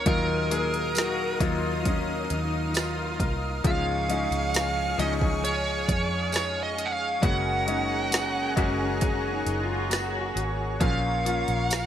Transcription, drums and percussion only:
0.06 kick, closed hi-hat
0.51 closed hi-hat
0.74 closed hi-hat
0.95 snare, closed hi-hat, tambourine
1.40 kick, closed hi-hat
1.85 kick, closed hi-hat
2.30 closed hi-hat
2.74 snare, closed hi-hat, tambourine
3.20 kick, closed hi-hat
3.64 kick, closed hi-hat
4.10 closed hi-hat
4.32 closed hi-hat
4.54 snare, closed hi-hat, tambourine
4.99 closed hi-hat
5.21 kick
5.45 closed hi-hat
5.89 kick, closed hi-hat
6.32 snare, closed hi-hat, tambourine
6.78 closed hi-hat
7.23 kick, closed hi-hat
7.68 closed hi-hat
8.12 snare, closed hi-hat, tambourine
8.57 kick, closed hi-hat
9.01 kick, closed hi-hat
9.47 closed hi-hat
9.91 snare, closed hi-hat, tambourine
10.37 closed hi-hat
10.81 kick, closed hi-hat
11.26 closed hi-hat
11.48 closed hi-hat
11.70 snare, closed hi-hat, tambourine

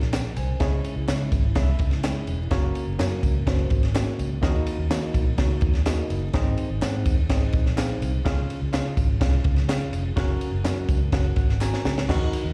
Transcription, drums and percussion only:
0.01 snare, ride
0.13 snare, clap, ride, tambourine
0.37 ride, tambourine
0.60 kick, snare, ride, tambourine
0.84 ride, tambourine
1.08 snare, clap, ride, tambourine
1.32 kick, ride, tambourine
1.55 kick, snare, ride, tambourine
1.79 kick, ride, tambourine
1.91 snare, ride
2.03 snare, clap, ride, tambourine
2.27 ride, tambourine
2.51 kick, snare, ride, tambourine
2.75 ride, tambourine
3.00 snare, clap, ride, tambourine
3.23 kick, ride, tambourine
3.47 kick, snare, ride, tambourine
3.59 ride
3.70 kick, ride, tambourine
3.83 snare, ride
3.95 snare, clap, ride, tambourine
4.19 ride, tambourine
4.42 kick, snare, ride, tambourine
4.66 ride, tambourine
4.91 snare, clap, ride, tambourine
5.14 kick, ride, tambourine
5.38 kick, snare, ride, tambourine
5.61 kick, ride
5.73 snare, ride
5.86 snare, clap, ride, tambourine
6.10 ride, tambourine
6.33 kick, snare, ride
6.57 ride, tambourine
6.82 snare, clap, ride, tambourine
7.06 kick, ride, tambourine
7.29 kick, snare, ride, tambourine
7.53 kick, ride, tambourine
7.66 snare
7.78 snare, clap, ride, tambourine
8.02 ride, tambourine
8.26 kick, snare, ride
8.50 ride, tambourine
8.74 snare, clap, ride, tambourine
8.97 kick, ride, tambourine
9.21 kick, snare, ride, tambourine
9.33 ride
9.44 kick, ride
9.56 snare, ride
9.69 snare, clap, ride, tambourine
9.93 ride, tambourine
10.17 kick, snare, ride
10.41 ride, tambourine
10.65 snare, clap, ride, tambourine
10.89 kick, ride, tambourine
11.12 kick, snare, ride, tambourine
11.24 ride
11.36 kick, ride, tambourine
11.49 snare
11.61 snare, clap, tambourine
11.74 snare
11.85 snare, tambourine
11.98 snare
12.08 kick, snare, crash, tambourine
12.33 ride, tambourine

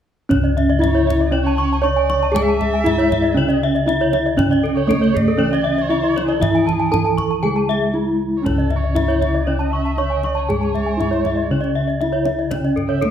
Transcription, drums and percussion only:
0.31 kendang high, kendang low
0.45 kendang slap
0.58 kendang slap, kendang low
0.84 kendang slap, kendang high, kendang low
0.98 kendang slap
1.10 kendang slap, kendang low
1.48 kendang slap
1.74 kendang slap
1.85 kendang slap
2.10 kendang high
2.36 kendang low
2.48 kendang slap
2.61 kendang slap, kendang low
2.86 kendang slap, kendang high, kendang low
2.99 kendang slap
3.12 kendang slap, kendang low
3.50 kendang slap
3.76 kendang slap
3.89 kendang slap, kendang high
4.13 kendang high
4.39 kendang high, kendang low
4.53 kendang slap
4.66 kendang slap
4.91 kendang slap, kendang high, kendang low
5.04 kendang slap
5.17 kendang slap, kendang low
5.55 kendang slap
5.79 kendang slap
5.93 kendang slap
6.18 kendang high
6.42 kendang low
6.56 kendang slap
6.69 kendang slap, kendang low
6.94 kendang slap, kendang high, kendang low
7.06 kendang slap
7.18 kendang slap, kendang low
7.71 kendang slap
8.46 kendang high, kendang low
8.60 kendang slap
8.70 kendang slap, kendang low
8.96 kendang slap, kendang high, kendang low
9.10 kendang slap
9.22 kendang slap, kendang low
9.61 kendang slap
9.86 kendang slap
9.98 kendang slap
10.23 kendang high
10.50 kendang low
10.63 kendang slap
10.76 kendang slap, kendang low
11.00 kendang slap, kendang high, kendang low
11.13 kendang slap
11.25 kendang slap, kendang low
11.64 kendang slap
11.90 kendang slap
12.01 kendang slap, kendang high
12.25 kendang high
12.51 kendang high, kendang low
12.64 kendang slap
12.77 kendang slap, kendang low
13.02 kendang slap, kendang high, kendang low

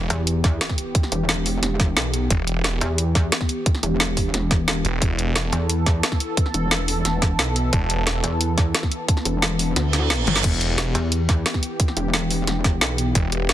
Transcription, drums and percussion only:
0.10 closed hi-hat
0.27 closed hi-hat
0.44 kick, snare, closed hi-hat
0.61 snare, closed hi-hat
0.69 kick, snare
0.78 closed hi-hat
0.95 kick, closed hi-hat
1.03 snare
1.12 closed hi-hat
1.29 snare, closed hi-hat
1.46 open hi-hat
1.63 snare, closed hi-hat
1.80 kick, snare, closed hi-hat
1.97 snare, closed hi-hat
2.14 closed hi-hat
2.30 kick, closed hi-hat
2.47 closed hi-hat
2.64 snare, closed hi-hat
2.81 closed hi-hat
2.98 closed hi-hat
3.15 kick, snare, closed hi-hat
3.32 snare, closed hi-hat
3.41 kick, snare
3.49 closed hi-hat
3.66 kick, closed hi-hat
3.75 snare
3.83 closed hi-hat
4.00 snare, closed hi-hat
4.17 kick, open hi-hat
4.34 snare, closed hi-hat
4.51 kick, snare, closed hi-hat
4.68 snare, closed hi-hat
4.85 closed hi-hat
5.02 kick, closed hi-hat
5.19 closed hi-hat
5.36 snare, closed hi-hat
5.53 closed hi-hat
5.70 closed hi-hat
5.86 kick, snare, closed hi-hat
6.03 snare, closed hi-hat
6.12 kick, snare
6.20 closed hi-hat
6.37 kick, closed hi-hat
6.46 snare
6.54 closed hi-hat
6.71 snare, closed hi-hat
6.88 open hi-hat
7.05 snare, closed hi-hat
7.22 kick, snare, closed hi-hat
7.39 snare, closed hi-hat
7.56 closed hi-hat
7.73 kick, closed hi-hat
7.90 closed hi-hat
8.07 snare, closed hi-hat
8.24 closed hi-hat
8.41 closed hi-hat
8.58 kick, snare, closed hi-hat
8.75 snare, closed hi-hat
8.83 kick, snare
8.92 closed hi-hat
9.08 kick, closed hi-hat
9.17 snare
9.25 closed hi-hat
9.42 snare, closed hi-hat
9.59 open hi-hat
9.76 snare, closed hi-hat
9.93 snare, closed hi-hat
10.10 snare, closed hi-hat
10.27 closed hi-hat, high tom
10.36 snare
10.44 kick, closed hi-hat, crash
10.61 closed hi-hat
10.78 snare, closed hi-hat
10.95 closed hi-hat
11.12 closed hi-hat
11.29 kick, snare, closed hi-hat
11.46 snare, closed hi-hat
11.54 kick, snare
11.63 closed hi-hat
11.80 kick, closed hi-hat
11.88 snare
11.97 closed hi-hat
12.14 snare, closed hi-hat
12.31 open hi-hat
12.47 snare, closed hi-hat
12.64 kick, snare, closed hi-hat
12.81 snare, closed hi-hat
12.98 closed hi-hat
13.15 kick, closed hi-hat
13.32 closed hi-hat
13.49 snare, closed hi-hat

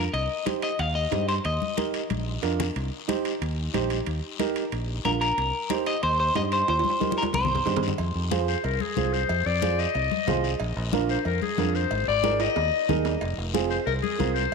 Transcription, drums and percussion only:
0.14 high conga, high timbale, long guiro
0.46 high conga, high timbale, short guiro
0.62 high timbale, short guiro
0.79 high conga, high timbale, long guiro
1.12 high conga, high timbale, low timbale, short guiro
1.29 high timbale, short guiro
1.45 high conga, high timbale, long guiro
1.62 high conga
1.77 high conga, high timbale, short guiro
1.94 high timbale, short guiro
2.10 high conga, high timbale, long guiro
2.43 high timbale, low timbale, short guiro
2.60 low conga, high timbale, short guiro
2.76 high conga, high timbale, long guiro
3.09 high conga, high timbale, short guiro
3.25 high timbale, short guiro
3.42 high conga, high timbale, long guiro
3.74 high conga, high timbale, short guiro
3.90 high timbale, short guiro
4.06 high conga, high timbale, long guiro
4.40 high conga, high timbale, short guiro
4.56 high timbale, short guiro
4.72 high conga, high timbale, long guiro
5.05 high conga, high timbale, low timbale, short guiro
5.21 high timbale, short guiro
5.38 high conga, high timbale, long guiro
5.70 high conga, high timbale, short guiro
5.86 high timbale, short guiro
6.03 high conga, high timbale, long guiro
6.35 high conga, high timbale, low timbale, short guiro
6.52 high timbale, short guiro
6.68 high conga, high timbale, long guiro
6.79 high timbale
6.85 high conga
6.90 high timbale
7.01 high conga, short guiro
7.11 high conga, high timbale
7.17 short guiro
7.23 high conga, high timbale
7.33 high conga, low timbale, long guiro
7.45 low conga
7.55 low conga, low timbale
7.66 low conga, low timbale, short guiro
7.77 low conga, low timbale
7.83 short guiro
7.88 low conga, low timbale
7.98 cowbell, high conga, long guiro
8.31 high conga, short guiro
8.48 short guiro
8.64 cowbell, high conga, long guiro
8.80 high conga
8.97 high conga, short guiro
9.14 short guiro
9.29 cowbell, high conga, long guiro
9.62 high conga, short guiro
9.79 short guiro
9.95 cowbell, high conga, long guiro
10.11 high conga
10.27 high conga, low conga, low timbale, short guiro
10.44 short guiro
10.60 cowbell, high conga, long guiro
10.93 high conga, short guiro
11.09 short guiro
11.25 cowbell, high conga, long guiro
11.42 high conga
11.58 high conga, low timbale, short guiro
11.75 short guiro
11.91 cowbell, high conga, long guiro
12.24 high conga, high timbale, short guiro
12.40 high timbale, short guiro
12.56 cowbell, high conga, low timbale, long guiro
12.89 high conga, low conga, short guiro
13.05 low timbale, short guiro
13.21 cowbell, high conga, long guiro
13.54 high conga, short guiro
13.70 short guiro
13.87 cowbell, high conga, long guiro
14.04 high conga
14.20 high conga, low timbale, short guiro
14.36 short guiro

